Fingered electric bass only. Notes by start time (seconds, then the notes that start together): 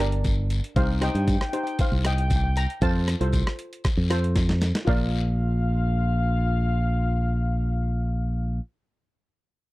Already playing: G1
0.76 C2
1.15 G2
1.92 C2
2.82 F2
3.21 C2
3.97 F2
4.87 A#1